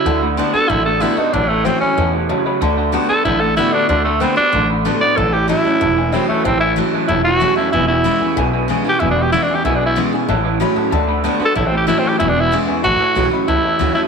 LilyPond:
<<
  \new Staff \with { instrumentName = "Upright piano" } { \time 4/4 \key a \major \tempo 4 = 188 <d'' fis'' a''>8 <d'' fis'' b''>8 <d'' fis'' a''>8 <d'' fis'' a''>8 <d'' fis'' a''>8 <d'' fis'' a''>8 <d'' fis'' a''>8 <d'' fis'' a''>8 | <cis'' e'' a''>8 <cis'' e'' a''>8 <cis'' e'' fis''>8 <cis'' e'' b''>8 <cis'' e'' a''>8 <cis'' e'' a''>8 <cis'' e'' a''>8 <cis'' e'' b''>8 | <d'' fis'' a''>8 <d'' fis'' a''>8 <d'' fis'' a''>8 <d'' a''>8 <d'' fis'' a''>8 <d'' fis'' a''>8 <d'' fis'' b''>8 <d'' a''>8 | <d'' fis'' a''>8 <d'' a''>8 <d'' fis'' b''>8 <fis'' a''>8 <d'' fis'' a''>8 <d'' fis'' b''>8 <d'' fis'' a''>8 <d'' fis'' b''>8 |
<cis'' e'' a''>8 <cis'' e'' a''>8 <cis'' e'' a''>8 <cis'' e'' a''>8 <cis'' e'' a''>8 <cis'' e'' gis''>8 <cis'' e'' b''>8 <cis'' e'' a''>8 | <cis'' e'' a''>8 <cis'' e'' gis''>8 <cis'' e'' a''>8 <cis'' e'' a''>8 <cis'' e'' a''>8 <cis'' e'' b''>8 <cis'' e'' a''>8 <cis'' e'' a''>8 | <b' e'' gis''>8 <b' gis''>8 <b' e'' b''>8 <b' gis''>8 <b' e'' gis''>8 <b' e'' gis''>8 <b' e'' gis''>8 <b' e'' gis''>8 | <b' e'' gis''>8 <b' e'' fis''>8 <b' e'' fis''>8 <b' e'' gis''>8 <b' e'' gis''>8 <b' e'' gis''>8 <b' e'' fis''>8 <b' e'' gis''>8 |
<cis'' e'' a''>8 <cis'' e'' a''>8 <cis'' e'' b''>8 <cis'' e'' a''>8 <d'' fis'' a''>8 <d'' fis'' b''>8 <d'' fis'' a''>8 <d'' fis'' a''>8 | <cis'' e'' a''>8 e''8 <cis'' e'' a''>8 <cis'' e'' a''>8 <b' e'' gis''>8 <b' e'' gis''>8 <b' e'' gis''>8 <b' e'' gis''>8 | <cis'' e'' a''>8 <cis'' e'' a''>8 <cis'' e'' a''>8 <cis'' e'' b''>8 <cis'' e'' a''>8 <cis'' e'' a''>8 <cis'' e'' fis''>8 <cis'' e'' a''>8 | }
  \new Staff \with { instrumentName = "Tenor saxophone" } { \time 4/4 \key a \major e'8 r4 a'8 e'8 a'8 e'8 dis'8 | d'8 a8 c'8 cis'4 r4. | r4. a'8 e'8 a'8 e'8 d'8 | d'8 a8 c'8 d'4 r4 d''8 |
a'8 g'8 e'2 c'8 a8 | c'8 e'8 r4 e'8 fis'4 e'8 | e'8 e'2 r8 \tuplet 3/2 { r4 g'8 } | \tuplet 3/2 { e'8 d'8 g'8 e'8 d'8 g'8 e'8 d'8 e'8 } r4 |
r2. \tuplet 3/2 { r4 a'8 } | \tuplet 3/2 { e'8 c'8 g'8 e'8 c'8 g'8 e'8 d'8 e'8 } r4 | fis'4. r8 e'4. e'8 | }
  \new Staff \with { instrumentName = "Steel-string acoustic guitar" } { \time 4/4 \key a \major << { r4 <d a d' fis'>8 <d' fis'>8 r4 <d a d' fis'>8 <d' fis'>8 | r4 <e a cis' e'>8 <cis' e'>8 r2 | r4 <d a d' fis'>8 <d' fis'>8 r4 <d a d' fis'>4 | r4 <d a d' fis'>8 <d' fis'>8 r4 <d a d' fis'>8 <d' fis'>8 |
r4 <e a cis' e'>8 <cis' e'>8 r4 <e a cis' e'>4 | r4 <e a cis' e'>4 r4 <e a cis' e'>8 <cis' e'>8 | r4 <e gis b e'>8 <b e'>8 r4 <e gis b e'>8 <b e'>8 | r4 <e gis b e'>8 <b e'>8 r4 <e gis b e'>8 <b e'>8 |
r4 <e a cis' e'>8 <cis' e'>8 r4 <d a d' fis'>8 <d' fis'>8 | r4 <e a cis' e'>4 r4 <e gis b e'>4 | r4 <e a cis' e'>8 <cis' e'>8 r4 <e a cis' e'>8 <cis' e'>8 | } \\ { d2 a,2 | a,2 b,4 cis4 | d2 a,2 | d2 a,2 |
a,2 e,2 | a,2 e,2 | e,2 b,2 | e,2 b,2 |
a,2 d2 | a,2 e,2 | a,2 e,2 | } >> }
  \new Staff \with { instrumentName = "Clean electric guitar" } { \clef bass \time 4/4 \key a \major <d a>8 <d a>8 <d b>8 <d b>8 <d a>8 <d a>8 <d b>8 <d b>8 | <a, e>8 <a, e>8 <a, fis>8 <a, fis>8 <a, e>8 <a, e>8 <a, fis>8 <a, fis>8 | <d a>8 <d a>8 <d b>8 <d b>8 <d a>8 <d a>8 <d b>8 <d b>8 | <d a>8 <d a>8 <d b>8 <d b>8 <d a>8 <d a>8 <d b>8 <d b>8 |
<a, e>8 <a, e>8 <a, fis>8 <a, fis>8 <a, e>8 <a, e>8 <a, fis>8 <a, fis>8 | <a, e>8 <a, e>8 <a, fis>8 <a, fis>8 <a, e>8 <a, e>8 <a, fis>8 <a, fis>8 | <e, b,>8 <e, b,>8 <e, cis>8 <e, cis>8 <e, b,>8 <e, b,>8 <e, cis>8 <e, cis>8 | <e, b,>8 <e, b,>8 <e, cis>8 <e, cis>8 <e, b,>8 <e, b,>8 <e, cis>8 <e, cis>8 |
<a, e>8 <a, e>8 <a, fis>8 <a, fis>8 <d a>8 <d a>8 <d b>8 <d b>8 | <a, e>8 <a, e>8 <a, fis>8 <a, fis>8 <e, b,>8 <e, b,>8 <e, cis>8 <e, cis>8 | <a, e>8 <a, e>8 <a, fis>8 <a, fis>8 <a, e>8 <a, e>8 <a, fis>8 <a, fis>8 | }
  \new Staff \with { instrumentName = "Upright bass" } { \clef bass \time 4/4 \key a \major d,4. r8 a,,4. r8 | a,,4. r8 e,4. r8 | d,4. r8 a,,4. r8 | d,4. r8 a,,4. r8 |
a,,4. r8 e,,4. r8 | a,,4. r8 e,,4. r8 | e,,4. r8 b,,4. r8 | e,,4. r8 b,,4. r8 |
a,,4. r8 d,4. r8 | a,,4. r8 e,,4. r8 | a,,8 r8 b,,8 r8 cis,8 r8 d,8 r8 | }
>>